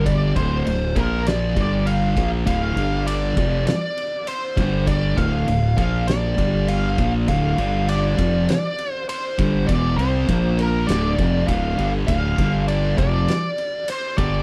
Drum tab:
RD |xxxxxxxx|xxxxxxxx|xxxxxxxx|xxxxxxxx|
SD |----o---|----o---|----o---|----o---|
BD |oo-o-o-o|o--o---o|oo-o-o-o|o--o---o|

RD |xxxxxxxx|xxxxxxxx|
SD |----o---|----o---|
BD |o-o--oo-|oo-o---o|